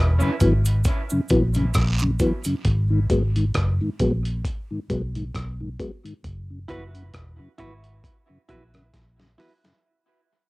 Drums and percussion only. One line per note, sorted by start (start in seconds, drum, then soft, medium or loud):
0.20 cabasa medium
0.40 kick medium
0.40 closed hi-hat medium
0.40 cabasa soft
0.65 closed hi-hat medium
0.65 cabasa medium
0.84 kick loud
0.84 closed hi-hat medium
0.84 cabasa medium
1.10 cabasa medium
1.29 kick loud
1.29 closed hi-hat medium
1.29 cabasa medium
1.54 closed hi-hat soft
1.54 cabasa medium
1.74 kick loud
1.74 cross-stick loud
1.74 closed hi-hat loud
1.74 cabasa medium
1.74 long guiro medium
1.99 cabasa soft
2.19 kick medium
2.19 closed hi-hat medium
2.19 cabasa soft
2.44 closed hi-hat medium
2.44 cabasa medium
2.65 kick loud
2.65 closed hi-hat medium
3.10 kick medium
3.10 closed hi-hat medium
3.36 closed hi-hat medium
3.54 kick medium
3.54 cross-stick loud
3.54 closed hi-hat medium
4.00 kick medium
4.00 closed hi-hat medium
4.25 closed hi-hat medium
4.45 kick loud
4.45 closed hi-hat medium
4.90 kick loud
4.90 closed hi-hat medium
5.15 closed hi-hat soft
5.35 kick loud
5.35 cross-stick loud
5.35 closed hi-hat loud
5.80 kick medium
5.80 closed hi-hat medium
6.05 closed hi-hat soft
6.24 kick loud
6.24 closed hi-hat medium
6.69 kick medium
6.69 closed hi-hat medium
6.95 closed hi-hat medium
7.14 kick loud
7.14 cross-stick loud
7.14 closed hi-hat medium
7.58 kick medium
7.58 closed hi-hat medium
7.84 closed hi-hat soft
8.04 kick loud
8.04 closed hi-hat medium
8.49 kick loud
8.49 closed hi-hat medium
8.74 cross-stick medium
8.74 closed hi-hat soft
8.94 kick loud
8.94 snare soft
8.94 closed hi-hat medium
9.20 snare medium
9.40 snare medium
9.40 open hi-hat medium
9.65 snare medium
9.65 closed hi-hat medium